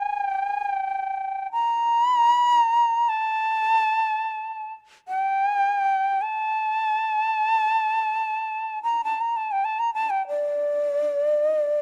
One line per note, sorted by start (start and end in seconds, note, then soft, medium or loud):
0.00 0.02 G5 medium
0.00 0.24 G#5 medium
0.24 0.48 G5 medium
0.48 0.69 G#5 medium
0.69 1.48 G5 medium
1.52 2.06 A#5 medium
2.06 2.20 B5 medium
2.20 2.36 A#5 medium
2.36 2.50 B5 medium
2.50 3.10 A#5 medium
3.09 4.73 A5 medium
5.08 6.23 G5 medium
6.22 8.83 A5 medium
8.83 9.02 A#5 medium
9.04 9.22 A5 medium
9.21 9.38 A#5 medium
9.37 9.53 A5 medium
9.52 9.66 G5 medium
9.65 9.81 A5 medium
9.79 9.93 A#5 medium
9.94 10.11 A5 medium
10.10 10.27 G5 medium
10.28 11.39 D5 medium
11.39 11.61 D#5 medium
11.61 11.82 D5 medium